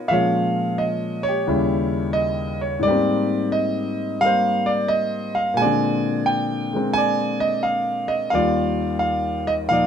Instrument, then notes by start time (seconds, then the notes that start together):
grand piano
Already playing: A#3 B3 C#4 D#4 F4
0.08 A#2 F3 G#3 E5 F5
0.13 C#4 C#5
0.78 D#5
1.23 C#5
1.28 G4
1.47 D#2 C#3 G3 E4
2.13 D#5
2.61 C#5
2.79 G#2 G3 D5
2.87 A#3 C4 G4
3.52 D#5
4.21 G3 A#3 F5
4.26 C5
4.66 D5
4.88 D#5
5.35 F5
5.54 A#2 G#3 G#5
5.62 D3 C4 D5
6.26 G5
6.73 G#3 A#3 C4
6.94 G#5
6.98 D5
7.40 D#5
7.63 F5
8.08 D#5
8.30 D#2 D#3 G3 F5
8.34 F4 D5
8.99 F5
9.47 D#5
9.68 A#2 F3 D#4 F5
9.73 D5